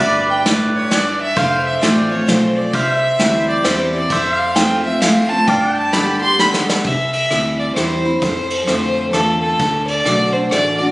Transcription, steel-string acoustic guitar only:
0.00 0.88 G2 medium
0.46 0.90 A2 medium
0.91 1.35 G2 medium
1.36 2.25 F2 medium
1.81 2.09 F3 medium
1.81 2.10 A3 medium
1.81 2.10 C4 medium
1.81 2.08 F4 medium
2.09 2.28 C4 medium
2.09 2.27 F4 medium
2.28 2.72 F3 medium
2.28 2.73 A3 medium
2.28 2.73 C4 medium
2.28 2.73 F4 loud
2.73 3.62 C3 medium
3.19 3.63 E3 medium
3.19 3.63 G3 medium
3.19 3.64 C4 medium
3.19 3.64 E4 medium
3.64 3.92 E3 medium
3.64 3.92 G3 medium
3.64 3.93 C4 medium
3.64 3.92 E4 medium
3.93 4.11 C4 medium
3.93 4.10 E4 medium
4.11 4.99 F2 medium
4.56 4.83 F3 medium
4.56 4.84 A3 medium
4.56 4.84 C4 medium
4.56 4.83 F4 loud
4.84 5.02 C4 medium
4.84 5.01 F4 medium
5.02 5.29 F3 medium
5.02 5.30 A3 medium
5.02 5.30 C4 medium
5.02 5.29 F4 medium
5.30 5.48 C4 medium
5.30 5.48 F4 medium
5.48 6.36 G2 medium
5.94 6.21 D3 medium
5.94 6.21 G3 medium
5.94 6.22 B3 medium
5.94 6.21 G4 medium
6.22 6.39 B3 medium
6.22 6.39 G4 medium
6.39 6.83 D3 medium
6.39 6.84 G3 medium
6.39 6.84 B3 medium
6.39 6.84 G4 medium
6.84 7.73 C3 medium
7.31 7.75 E3 soft
7.31 7.75 G3 medium
7.31 7.76 C4 medium
7.31 7.76 E4 medium
7.77 8.04 E3 medium
7.77 8.04 G3 soft
7.77 8.05 C4 medium
7.77 8.04 E4 medium
8.05 8.23 C4 soft
8.05 8.22 E4 medium
8.22 9.11 F2 medium
8.67 9.12 D3 medium
8.67 9.13 A3 medium
8.67 9.13 C4 medium
8.67 9.13 F4 medium
9.14 9.58 D3 medium
9.14 9.59 A3 medium
9.14 9.59 C4 medium
9.14 9.59 F4 medium
9.59 10.05 D3 medium
10.06 10.33 D3 medium
10.06 10.33 A3 soft
10.06 10.34 D4 medium
10.06 10.32 F#4 medium
10.34 10.52 D4 medium
10.34 10.51 F#4 medium
10.52 10.79 D3 medium
10.52 10.79 A3 medium
10.52 10.80 D4 medium
10.52 10.79 F#4 medium
10.80 10.92 D4 soft
10.80 10.92 F#4 medium

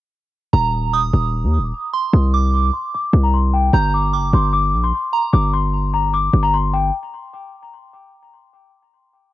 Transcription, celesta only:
0.53 0.71 G6 medium
0.73 1.11 D#6 medium
1.13 1.31 D6 medium
1.34 1.62 D#6 medium
1.64 2.11 D6 medium
2.13 2.31 D#6 loud
2.34 2.71 D6 medium
2.73 2.91 C6 medium
2.95 3.22 D6 medium
3.23 3.32 A#5 medium
3.34 3.51 C6 medium
3.54 3.71 G5 medium
3.74 3.91 G6 loud
3.94 4.31 D6 medium
4.34 4.51 C6 medium
4.53 4.81 D6 medium
4.84 5.31 C6 medium
5.33 5.50 D6 medium
5.53 5.91 C6 medium
5.93 6.11 A#5 medium
6.13 6.42 D6 medium
6.43 6.52 A#5 medium
6.54 6.71 C6 medium
6.73 6.91 G5 medium

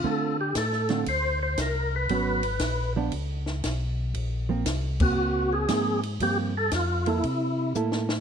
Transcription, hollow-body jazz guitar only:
0.04 0.35 D3 medium
0.04 0.35 A3 medium
0.04 0.36 C4 medium
0.04 0.36 F4 medium
0.90 1.05 D3 medium
0.90 1.05 A3 medium
0.90 1.06 C4 medium
0.90 1.06 F4 medium
2.10 2.41 F#3 medium
2.10 2.41 B3 medium
2.10 2.42 C#4 medium
2.96 3.11 F3 medium
2.96 3.12 B3 medium
2.96 3.11 D4 medium
4.49 4.65 F3 medium
4.49 4.65 A#3 medium
4.49 4.65 C4 medium
5.01 5.66 A#3 medium
5.01 5.66 C4 medium
5.68 6.00 F3 medium
5.68 6.00 A#3 medium
5.68 6.00 C4 medium
6.22 6.52 F3 medium
6.22 6.53 A#3 medium
6.22 6.53 C4 medium
7.07 7.22 A#3 medium
7.07 7.23 E4 medium
7.07 7.23 A4 medium
7.75 8.07 A#3 medium
7.75 8.07 E4 medium
7.75 8.07 A4 medium

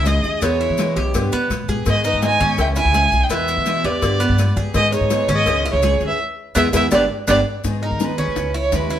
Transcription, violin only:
0.07 0.45 D#5 medium
0.43 0.97 C#5 medium
1.90 2.05 D#5 loud
2.07 2.22 D#5 medium
2.25 2.57 G#5 loud
2.60 2.68 G5 loud
2.78 3.25 G#5 loud
3.23 3.33 G5 medium
3.31 3.87 E5 loud
3.85 4.57 D5 loud
4.75 4.92 D#5 loud
4.94 5.32 C#5 loud
5.35 5.69 D#5 loud
5.72 6.05 C#5 medium
6.08 6.19 E5 medium
6.57 6.68 E5 medium
6.76 6.87 E5 loud
6.94 7.05 D5 medium
7.30 7.41 D5 loud
7.84 8.06 A#4 medium
8.05 8.56 B4 medium
8.57 8.77 C#5 loud
8.76 8.99 B4 medium

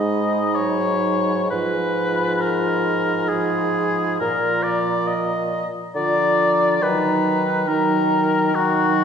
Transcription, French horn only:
0.00 0.41 G#3 soft
0.58 1.50 F#3 soft
1.51 3.27 F3 soft
3.31 4.19 F3 soft
4.22 5.64 F3 soft
5.95 6.78 F3 soft
6.82 7.66 F#3 medium
7.68 8.53 F#3 medium
8.54 9.04 F#3 medium

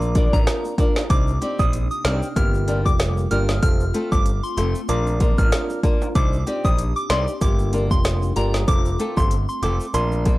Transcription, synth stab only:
0.00 0.29 D4 loud
0.00 0.29 F4 medium
0.00 0.29 A#4 loud
0.33 0.75 D4 medium
0.33 0.75 F4 medium
0.33 0.75 A#4 medium
0.78 1.08 D4 medium
0.78 1.08 F4 medium
0.78 1.08 A#4 medium
1.10 1.32 D4 medium
1.10 1.32 D#4 medium
1.10 1.32 C5 loud
1.59 1.79 D4 medium
1.59 1.79 D#4 medium
1.59 1.79 C5 medium
2.36 2.81 A#3 loud
2.36 2.81 F4 medium
2.36 2.81 G4 loud
2.85 3.28 A#3 medium
2.85 3.28 F4 medium
2.85 3.28 G4 medium
3.31 3.60 A#3 medium
3.31 3.60 F4 medium
3.31 3.61 G4 medium
3.62 3.85 C4 medium
3.62 3.85 F4 medium
3.62 3.85 A4 loud
4.12 4.31 C4 medium
4.12 4.31 F4 medium
4.12 4.31 A4 medium
4.89 5.34 D4 loud
4.89 5.34 F4 medium
4.89 5.34 A#4 loud
5.38 5.80 D4 medium
5.38 5.80 F4 medium
5.38 5.81 A#4 medium
5.83 6.13 D4 medium
5.83 6.13 F4 medium
5.83 6.13 A#4 medium
6.15 6.37 D4 medium
6.15 6.37 D#4 medium
6.15 6.37 C5 loud
6.64 6.84 D4 medium
6.64 6.84 D#4 medium
6.64 6.84 C5 medium
7.41 7.86 A#3 loud
7.41 7.87 F4 medium
7.41 7.87 G4 loud
7.90 8.33 A#3 medium
7.90 8.33 F4 medium
7.90 8.33 G4 medium
8.36 8.65 A#3 medium
8.36 8.66 F4 medium
8.36 8.66 G4 medium
8.67 8.90 C4 medium
8.67 8.90 F4 medium
8.67 8.90 A4 loud
9.17 9.36 C4 medium
9.17 9.37 F4 medium
9.17 9.37 A4 medium
9.94 10.38 D4 loud
9.94 10.38 F4 medium
9.94 10.38 A#4 loud

